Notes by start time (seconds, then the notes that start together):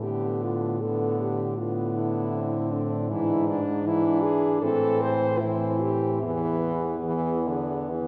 Already playing: A2
0.02 D3 B3 G4
0.42 F4
0.81 D3 B3 A4
1.20 G4
1.58 D3 B3 F4
1.94 E4
2.36 C4
2.71 D4
3.10 G#2 E3 D4 E4
3.49 D4
3.85 E3 D4 E4
4.23 G#4
4.61 A2 E3 C4 A4
5.01 C5
5.39 E3 C4 E4
5.81 G4
6.23 E2 E3 B3 G#4
7.05 E3
7.47 D3
7.90 E3